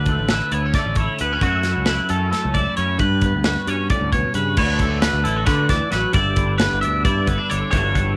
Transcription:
0.00 0.16 D2 medium
0.00 1.40 D3 medium
0.00 0.31 E4 soft
0.00 0.29 B4 medium
0.06 0.78 A3 soft
0.06 kick medium
0.06 closed hi-hat medium
0.19 0.40 A1 medium
0.28 0.98 E4 medium
0.28 0.52 B4 medium
0.28 snare loud
0.28 closed hi-hat medium
0.52 0.73 D2 medium
0.52 0.66 B3 medium
0.52 0.74 C#5 medium
0.52 closed hi-hat medium
0.66 1.21 C#4 soft
0.74 0.97 D5 medium
0.74 kick loud
0.74 snare soft
0.74 closed hi-hat medium
0.78 1.44 A3 medium
0.86 1.07 A1 medium
0.95 1.20 C#5 medium
0.95 kick medium
0.95 closed hi-hat medium
1.00 1.43 E4 medium
1.19 1.41 D2 medium
1.19 1.33 B3 medium
1.19 1.43 B4 medium
1.19 closed hi-hat medium
1.33 1.43 C#4 medium
1.41 1.74 F#2 medium
1.41 2.98 F#2 medium
1.41 3.03 F#3 medium
1.41 1.66 A3 medium
1.41 1.88 F#4 medium
1.41 kick medium
1.41 closed hi-hat medium
1.46 2.10 C#4 medium
1.46 1.87 E4 medium
1.63 2.33 A3 soft
1.63 snare soft
1.63 closed hi-hat medium
1.77 1.98 C#2 medium
1.86 2.55 E4 medium
1.86 2.10 B4 medium
1.86 snare loud
1.86 closed hi-hat medium
2.09 2.31 F#2 medium
2.09 2.77 C#4 medium
2.09 2.31 A4 medium
2.09 closed hi-hat medium
2.32 3.03 A3 soft
2.32 2.55 A4 medium
2.32 snare soft
2.32 closed hi-hat medium
2.45 2.66 C#2 medium
2.54 3.00 E4 medium
2.54 2.76 D5 medium
2.54 kick medium
2.54 closed hi-hat medium
2.77 2.98 F#2 medium
2.77 2.98 C#4 medium
2.77 3.00 C#5 medium
2.77 closed hi-hat medium
2.99 3.31 G2 loud
2.99 4.55 G2 medium
2.99 3.44 B4 medium
2.99 kick medium
2.99 closed hi-hat medium
3.21 4.56 B3 soft
3.21 kick medium
3.21 closed hi-hat medium
3.35 3.56 D2 medium
3.44 4.56 F#4 medium
3.44 3.68 B4 medium
3.44 snare loud
3.44 closed hi-hat medium
3.67 3.89 G2 medium
3.67 4.56 C#4 medium
3.67 3.90 C#5 medium
3.67 closed hi-hat medium
3.90 4.13 A2 medium
3.90 4.12 D5 medium
3.90 kick loud
3.90 closed hi-hat medium
4.01 4.23 D2 medium
4.13 4.36 B2 soft
4.13 4.35 C#5 medium
4.13 kick medium
4.13 closed hi-hat medium
4.34 4.56 G2 medium
4.34 4.58 C#3 medium
4.34 4.58 B4 medium
4.34 closed hi-hat medium
4.57 5.11 D2 medium
4.57 5.44 D3 medium
4.57 4.79 A3 medium
4.57 5.02 B3 medium
4.57 5.24 F#4 medium
4.57 5.02 C#5 medium
4.57 kick loud
4.57 crash loud
4.79 6.13 A3 medium
4.79 kick medium
4.79 closed hi-hat medium
5.02 6.60 B3 medium
5.02 5.24 B4 medium
5.02 snare loud
5.02 closed hi-hat medium
5.13 5.24 D2 medium
5.24 5.47 A1 medium
5.24 5.36 E4 medium
5.24 5.46 A4 medium
5.24 closed hi-hat medium
5.36 6.13 F#4 medium
5.45 5.68 D3 medium
5.45 5.69 D3 loud
5.45 5.69 B4 medium
5.45 kick loud
5.45 snare soft
5.45 closed hi-hat loud
5.69 5.80 D2 medium
5.69 5.90 E3 medium
5.69 5.92 D5 medium
5.69 kick medium
5.69 snare soft
5.69 closed hi-hat medium
5.91 6.03 A1 medium
5.91 6.14 F#3 medium
5.91 6.14 B4 medium
5.91 snare soft
5.91 closed hi-hat medium
6.13 6.68 G1 loud
6.13 7.69 G2 medium
6.13 7.06 E4 medium
6.13 6.58 D5 medium
6.13 kick loud
6.13 closed hi-hat medium
6.36 7.49 D3 medium
6.36 kick medium
6.36 closed hi-hat medium
6.58 7.26 B3 medium
6.58 6.81 B4 medium
6.58 snare loud
6.58 closed hi-hat medium
6.72 6.82 G1 medium
6.81 7.26 D4 medium
6.81 7.05 E5 medium
6.81 closed hi-hat medium
6.85 7.05 D2 medium
7.05 7.27 G2 loud
7.05 7.76 E4 medium
7.05 7.28 D5 medium
7.05 kick loud
7.05 closed hi-hat medium
7.26 7.38 G1 medium
7.26 7.38 B3 medium
7.26 7.50 B4 medium
7.26 kick medium
7.26 closed hi-hat medium
7.38 7.72 D4 soft
7.50 7.62 G1 medium
7.50 7.72 D3 medium
7.50 7.70 C#5 medium
7.50 closed hi-hat medium
7.71 8.17 G1 loud
7.71 8.17 G2 medium
7.71 7.95 E3 medium
7.71 8.17 G3 medium
7.71 8.16 C#5 loud
7.71 kick medium
7.71 closed hi-hat medium
7.75 8.17 D4 medium
7.75 8.17 F#4 medium
7.95 8.17 E3 medium
7.95 kick medium
7.95 closed hi-hat medium

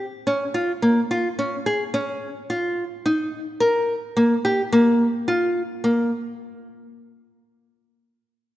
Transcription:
0.27 0.44 C#4 medium
0.54 0.71 F4 medium
0.82 0.99 A#3 medium
1.11 1.27 F4 medium
1.39 1.55 C#4 medium
1.66 1.83 G#4 medium
1.94 2.27 C#4 medium
2.50 2.83 F4 medium
3.06 3.39 D#4 loud
3.60 3.94 A#4 medium
4.17 4.33 A#3 medium
4.45 4.62 G4 medium
4.73 5.06 A#3 medium
5.28 5.62 F4 medium
5.84 6.10 A#3 medium

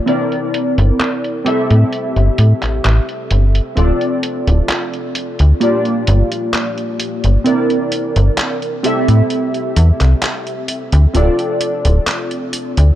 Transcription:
0.00 0.10 A#3 medium
0.06 1.37 C4 medium
0.06 1.37 E4 medium
0.06 1.38 A#4 medium
0.06 1.38 D5 medium
0.06 closed hi-hat soft
0.32 closed hi-hat soft
0.54 closed hi-hat medium
0.78 0.92 G1 medium
0.78 closed hi-hat soft
1.00 clap loud
1.00 closed hi-hat medium
1.24 closed hi-hat soft
1.44 3.67 C4 medium
1.44 3.68 G4 medium
1.44 3.68 A4 medium
1.44 3.69 E5 medium
1.44 closed hi-hat medium
1.70 1.84 A2 medium
1.70 closed hi-hat soft
1.93 closed hi-hat soft
2.16 2.30 G1 medium
2.16 closed hi-hat soft
2.38 2.53 A2 medium
2.38 closed hi-hat medium
2.62 2.80 A1 soft
2.62 clap soft
2.62 closed hi-hat soft
2.85 3.00 A1 medium
2.85 clap loud
2.85 closed hi-hat soft
3.09 closed hi-hat soft
3.31 3.60 G1 medium
3.31 closed hi-hat medium
3.55 closed hi-hat medium
3.75 3.92 D1 medium
3.75 5.52 C4 medium
3.75 5.53 F4 medium
3.75 5.53 A4 medium
3.75 5.54 D5 medium
3.75 closed hi-hat soft
4.01 closed hi-hat soft
4.23 closed hi-hat medium
4.47 4.61 D1 loud
4.47 closed hi-hat medium
4.69 clap loud
4.69 closed hi-hat soft
4.93 closed hi-hat soft
5.15 closed hi-hat medium
5.39 5.53 D2 medium
5.39 closed hi-hat soft
5.60 7.37 A#3 medium
5.60 7.37 F4 medium
5.60 7.38 G4 medium
5.60 7.38 D5 medium
5.60 closed hi-hat soft
5.85 closed hi-hat soft
6.07 6.23 G1 loud
6.07 closed hi-hat medium
6.32 closed hi-hat medium
6.53 clap loud
6.53 closed hi-hat soft
6.78 closed hi-hat soft
7.00 closed hi-hat medium
7.24 7.38 G1 medium
7.24 closed hi-hat soft
7.44 8.75 C4 medium
7.44 8.75 E4 medium
7.44 8.76 A#4 medium
7.44 8.76 D5 medium
7.44 closed hi-hat soft
7.70 closed hi-hat soft
7.92 closed hi-hat medium
8.16 8.30 G1 medium
8.16 closed hi-hat soft
8.38 clap loud
8.38 closed hi-hat soft
8.62 closed hi-hat soft
8.83 11.06 C4 medium
8.83 11.06 G4 medium
8.83 11.07 A4 medium
8.83 11.07 E5 medium
8.83 closed hi-hat medium
9.08 9.22 A2 medium
9.08 closed hi-hat soft
9.30 closed hi-hat soft
9.54 closed hi-hat soft
9.76 9.92 E2 loud
9.76 closed hi-hat medium
10.01 10.15 C2 medium
10.01 clap soft
10.01 closed hi-hat soft
10.22 clap loud
10.22 closed hi-hat soft
10.47 closed hi-hat soft
10.68 closed hi-hat medium
10.92 11.07 D2 loud
10.92 closed hi-hat soft
11.13 11.30 D1 medium
11.13 12.90 C4 medium
11.13 12.91 F4 medium
11.13 12.91 A4 medium
11.13 12.92 D5 medium
11.13 closed hi-hat soft
11.39 closed hi-hat soft
11.61 closed hi-hat medium
11.85 11.99 D1 loud
11.85 closed hi-hat soft
12.07 clap loud
12.07 closed hi-hat soft
12.31 closed hi-hat soft
12.53 closed hi-hat medium
12.77 12.91 D2 medium
12.77 closed hi-hat soft

